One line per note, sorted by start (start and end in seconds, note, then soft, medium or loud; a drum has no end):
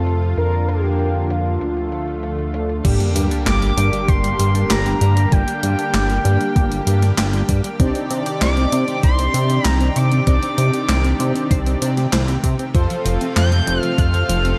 0.00 0.34 F2 medium
0.00 0.35 C3 medium
0.00 2.81 F3 medium
0.00 0.35 A3 medium
0.00 2.81 F4 medium
0.00 0.37 A4 loud
0.06 0.34 C4 medium
0.06 0.34 F4 medium
0.06 0.34 A4 medium
0.06 closed hi-hat medium
0.22 closed hi-hat soft
0.37 1.58 F2 medium
0.37 2.82 D3 medium
0.37 1.60 A#3 medium
0.37 1.59 D4 medium
0.37 1.59 F4 medium
0.37 1.59 A#4 loud
0.37 0.70 A#4 loud
0.37 closed hi-hat medium
0.53 closed hi-hat soft
0.68 1.32 G4 loud
0.68 closed hi-hat medium
0.84 closed hi-hat soft
0.99 closed hi-hat medium
1.15 closed hi-hat soft
1.30 2.54 F4 medium
1.30 closed hi-hat loud
1.46 closed hi-hat soft
1.61 2.82 D2 medium
1.61 2.84 A3 medium
1.61 closed hi-hat medium
1.77 closed hi-hat soft
1.92 closed hi-hat medium
2.08 closed hi-hat soft
2.23 closed hi-hat medium
2.39 closed hi-hat soft
2.54 2.81 A3 medium
2.54 2.81 D4 medium
2.54 2.81 A4 medium
2.54 closed hi-hat loud
2.69 closed hi-hat soft
2.85 2.97 G1 medium
2.85 7.76 D3 medium
2.85 2.93 G3 loud
2.85 7.76 G3 medium
2.85 4.98 A#3 loud
2.85 7.76 A#3 medium
2.85 4.98 D4 medium
2.85 4.98 G4 loud
2.85 12.71 G4 medium
2.85 kick loud
2.85 closed hi-hat medium
2.85 crash loud
2.85 sub drop medium
3.00 3.05 G3 medium
3.00 closed hi-hat soft
3.16 3.28 G2 medium
3.16 3.23 G3 loud
3.16 closed hi-hat loud
3.31 3.36 D4 medium
3.31 closed hi-hat soft
3.46 3.72 G1 medium
3.46 3.54 G4 medium
3.46 4.10 D6 loud
3.46 snare loud
3.46 clap loud
3.46 closed hi-hat medium
3.62 3.70 G3 medium
3.62 closed hi-hat soft
3.77 3.90 G2 loud
3.77 3.89 G3 medium
3.77 closed hi-hat loud
3.93 4.01 G3 medium
3.93 closed hi-hat soft
4.08 4.34 G1 medium
4.08 4.16 G4 loud
4.08 4.72 C6 loud
4.08 kick loud
4.08 closed hi-hat medium
4.24 4.29 G3 medium
4.24 closed hi-hat soft
4.39 4.64 G2 medium
4.39 4.47 G3 loud
4.39 closed hi-hat loud
4.55 4.59 D4 medium
4.55 closed hi-hat soft
4.70 4.95 G1 loud
4.70 4.78 G4 medium
4.70 5.34 A#5 loud
4.70 snare loud
4.70 clap loud
4.70 closed hi-hat medium
4.86 4.94 G3 medium
4.86 closed hi-hat soft
5.01 5.26 G2 loud
5.01 5.13 G3 medium
5.01 5.28 A#3 medium
5.01 5.28 D4 medium
5.01 5.29 G4 medium
5.01 closed hi-hat loud
5.17 5.21 G3 medium
5.17 closed hi-hat soft
5.32 5.45 G1 loud
5.32 5.40 G3 loud
5.32 6.83 A#3 loud
5.32 6.83 D4 medium
5.32 6.83 G4 loud
5.32 7.49 G5 loud
5.32 kick loud
5.32 closed hi-hat medium
5.48 5.52 G3 medium
5.48 closed hi-hat soft
5.63 5.76 G2 medium
5.63 5.71 G3 loud
5.63 closed hi-hat loud
5.79 5.83 D4 medium
5.79 closed hi-hat soft
5.94 6.19 G1 medium
5.94 6.02 G4 medium
5.94 snare loud
5.94 clap medium
5.94 closed hi-hat medium
6.10 6.17 G3 medium
6.10 closed hi-hat soft
6.25 6.38 G2 loud
6.25 6.37 G3 medium
6.25 closed hi-hat loud
6.40 6.48 G3 medium
6.40 closed hi-hat soft
6.56 6.81 G1 medium
6.56 6.64 G4 loud
6.56 kick loud
6.56 closed hi-hat medium
6.71 6.76 G3 medium
6.71 closed hi-hat soft
6.87 7.12 G2 medium
6.87 6.95 G3 loud
6.87 7.00 A#3 medium
6.87 7.00 D4 medium
6.87 7.00 G4 loud
6.87 closed hi-hat loud
7.02 7.07 D4 medium
7.02 snare soft
7.02 closed hi-hat soft
7.18 7.43 G1 loud
7.18 7.26 G4 medium
7.18 snare loud
7.18 clap loud
7.18 closed hi-hat medium
7.33 7.41 G3 medium
7.33 closed hi-hat soft
7.49 7.61 G2 medium
7.49 7.60 G3 medium
7.49 kick medium
7.49 closed hi-hat loud
7.64 7.69 G3 medium
7.64 closed hi-hat soft
7.80 7.92 C2 loud
7.80 14.59 C3 medium
7.80 12.71 D#3 medium
7.80 9.92 C4 loud
7.80 7.87 C4 loud
7.80 9.92 D4 medium
7.80 9.92 D#4 medium
7.80 9.92 G4 medium
7.80 9.92 D5 loud
7.80 10.25 D5 medium
7.80 kick loud
7.80 closed hi-hat medium
7.95 8.00 C4 medium
7.95 closed hi-hat soft
8.11 8.23 C3 medium
8.11 8.18 C4 loud
8.11 closed hi-hat medium
8.26 8.31 G4 medium
8.26 closed hi-hat soft
8.41 8.67 C2 medium
8.41 8.49 C5 medium
8.41 9.00 D6 loud
8.41 snare loud
8.41 clap medium
8.41 closed hi-hat medium
8.57 8.65 C4 medium
8.57 closed hi-hat soft
8.72 8.85 C3 loud
8.72 8.84 C4 medium
8.72 closed hi-hat loud
8.88 8.96 C4 medium
8.88 closed hi-hat soft
9.03 9.28 C2 medium
9.03 9.11 C5 loud
9.03 9.67 C6 loud
9.03 kick loud
9.03 closed hi-hat medium
9.19 9.24 C4 medium
9.19 closed hi-hat soft
9.34 9.59 C3 medium
9.34 9.42 C4 loud
9.34 closed hi-hat loud
9.50 9.55 G4 medium
9.50 closed hi-hat soft
9.65 9.90 C2 medium
9.65 9.73 C5 medium
9.65 9.98 A#5 loud
9.65 snare loud
9.65 clap loud
9.65 closed hi-hat medium
9.81 9.89 C4 medium
9.81 closed hi-hat soft
9.96 10.21 C3 medium
9.96 10.23 C4 medium
9.96 10.08 C4 medium
9.96 10.23 D4 medium
9.96 10.23 D#4 medium
9.96 10.23 G4 medium
9.96 10.23 D5 medium
9.96 11.82 D6 loud
9.96 closed hi-hat loud
10.12 10.16 C4 medium
10.12 closed hi-hat soft
10.27 10.40 C2 loud
10.27 11.78 C4 medium
10.27 10.35 C4 loud
10.27 11.78 D4 medium
10.27 11.78 D#4 medium
10.27 11.78 G4 medium
10.27 11.78 D5 loud
10.27 kick loud
10.27 closed hi-hat medium
10.43 10.47 C4 medium
10.43 closed hi-hat soft
10.58 10.71 C3 medium
10.58 10.66 C4 loud
10.58 closed hi-hat medium
10.74 10.78 G4 medium
10.74 closed hi-hat soft
10.89 11.14 C2 medium
10.89 10.97 C5 medium
10.89 snare loud
10.89 clap medium
10.89 closed hi-hat medium
11.04 11.12 C4 medium
11.04 closed hi-hat soft
11.20 11.32 C3 loud
11.20 11.31 C4 medium
11.20 closed hi-hat loud
11.35 11.43 C4 medium
11.35 closed hi-hat soft
11.51 11.76 C2 medium
11.51 11.59 C5 loud
11.51 kick loud
11.51 closed hi-hat medium
11.66 11.71 C4 medium
11.66 closed hi-hat soft
11.82 12.07 C3 medium
11.82 11.95 C4 medium
11.82 11.90 C4 loud
11.82 11.95 D4 medium
11.82 11.95 D#4 medium
11.82 11.95 G4 medium
11.82 11.95 D5 loud
11.82 closed hi-hat loud
11.97 12.02 G4 medium
11.97 snare soft
11.97 closed hi-hat soft
12.13 12.38 C2 loud
12.13 12.21 C5 medium
12.13 snare loud
12.13 clap medium
12.13 closed hi-hat medium
12.28 12.36 C4 medium
12.28 closed hi-hat soft
12.44 12.56 C3 medium
12.44 12.55 C4 medium
12.44 kick medium
12.44 closed hi-hat loud
12.59 12.64 C4 medium
12.59 closed hi-hat soft
12.75 12.87 F2 loud
12.75 14.59 F3 medium
12.75 12.82 F3 loud
12.75 14.59 A3 medium
12.75 14.59 F4 loud
12.75 14.59 F4 medium
12.75 14.59 A4 medium
12.75 14.59 C5 loud
12.75 kick loud
12.75 closed hi-hat medium
12.90 12.95 F3 medium
12.90 closed hi-hat soft
13.05 13.18 F1 medium
13.05 13.13 F3 loud
13.05 closed hi-hat medium
13.21 13.26 C4 medium
13.21 closed hi-hat soft
13.36 13.61 F2 medium
13.36 13.44 F4 medium
13.36 13.81 G6 loud
13.36 snare loud
13.36 clap loud
13.36 closed hi-hat medium
13.52 13.60 F3 medium
13.52 closed hi-hat soft
13.67 13.80 F1 loud
13.67 13.79 F3 medium
13.67 closed hi-hat medium
13.81 13.91 F3 medium
13.81 13.99 F6 loud
13.81 closed hi-hat soft
13.98 14.23 F2 medium
13.98 14.06 F4 loud
13.98 14.59 F6 loud
13.98 kick loud
13.98 closed hi-hat medium
14.14 14.18 F3 medium
14.14 closed hi-hat soft
14.29 14.54 F1 medium
14.29 14.37 F3 loud
14.29 closed hi-hat loud
14.45 14.49 C4 medium
14.45 closed hi-hat soft